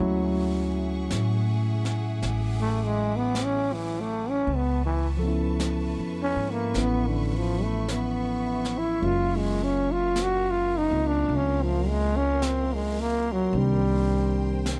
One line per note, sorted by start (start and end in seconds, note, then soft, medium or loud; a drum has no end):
0.00 1.08 D2 medium
0.00 1.50 F#3 medium
0.00 4.47 F#3 medium
0.00 4.48 G#3 soft
0.00 4.48 A3 soft
0.00 4.48 C#4 soft
0.00 4.48 E4 medium
0.00 4.44 G#4 medium
0.00 4.44 E5 medium
0.00 4.43 F#5 medium
0.00 2.21 C#6 medium
0.00 brush sweep soft
1.10 2.20 A2 medium
1.10 brush sweep soft
1.10 snare soft
1.10 hi-hat pedal soft
1.85 snare soft
2.22 4.44 A1 medium
2.22 4.46 D6 medium
2.22 brush sweep soft
2.22 snare soft
2.61 2.86 A3 medium
2.85 3.17 G#3 medium
3.16 3.46 B3 medium
3.35 brush sweep soft
3.35 snare soft
3.35 hi-hat pedal soft
3.44 3.75 C#4 medium
3.73 4.02 E3 medium
4.00 4.31 A3 medium
4.30 4.57 C#4 medium
4.47 5.94 C#2 medium
4.47 8.98 B4 medium
4.47 13.50 E5 medium
4.47 6.73 A5 medium
4.47 11.25 C#6 medium
4.47 brush sweep soft
4.56 4.85 B3 medium
4.86 5.08 E3 medium
5.17 9.00 F3 medium
5.17 9.01 A4 medium
5.23 6.73 B3 soft
5.23 6.75 C#4 soft
5.28 6.76 E4 medium
5.60 brush sweep soft
5.60 snare soft
5.60 hi-hat pedal soft
5.98 6.34 F2 medium
6.23 6.53 C#4 medium
6.36 6.72 G#2 medium
6.52 6.81 A#3 medium
6.74 8.99 A1 medium
6.74 9.02 B3 soft
6.74 9.03 C#4 soft
6.74 9.04 E4 soft
6.74 9.00 B5 medium
6.74 brush sweep soft
6.74 snare soft
6.80 7.09 B3 medium
7.08 7.37 D3 medium
7.36 7.65 F3 medium
7.64 7.94 A3 medium
7.88 8.80 B3 medium
7.88 brush sweep soft
7.88 snare soft
7.88 hi-hat pedal soft
8.65 snare soft
8.78 9.07 E4 medium
9.01 10.87 F#1 medium
9.01 13.54 F#3 medium
9.01 13.54 G#3 soft
9.01 10.89 A#3 medium
9.01 13.55 C#4 soft
9.01 9.38 F4 medium
9.01 14.80 A#4 medium
9.01 13.50 F5 medium
9.01 brush sweep soft
9.06 10.92 F4 medium
9.36 9.65 G#3 medium
9.63 9.93 C#4 medium
9.92 10.24 F4 medium
10.16 brush sweep soft
10.16 snare soft
10.16 hi-hat pedal medium
10.23 10.52 F#4 medium
10.51 10.79 F4 medium
10.77 11.08 D#4 medium
10.90 11.26 C#2 medium
10.90 13.53 A#3 soft
10.90 13.54 C4 soft
10.90 13.55 F4 soft
11.07 11.37 D4 medium
11.27 13.50 C#2 medium
11.27 14.80 C6 medium
11.27 brush sweep soft
11.36 11.64 C#4 medium
11.63 11.89 F3 medium
11.88 12.18 G#3 medium
12.17 12.46 C#4 medium
12.42 12.76 C4 medium
12.42 brush sweep soft
12.42 snare soft
12.42 hi-hat pedal soft
12.75 13.02 G#3 medium
13.00 13.34 A#3 loud
13.32 13.60 F#3 medium
13.52 14.80 C2 medium
13.52 14.80 D#3 medium
13.52 14.80 A#3 soft
13.52 14.80 C4 medium
13.52 14.80 C5 medium
13.52 14.80 G5 medium
13.52 brush sweep soft
13.56 14.68 G3 medium
13.56 14.80 D4 soft
13.56 14.80 G4 medium
14.66 brush sweep soft
14.66 snare soft
14.66 hi-hat pedal soft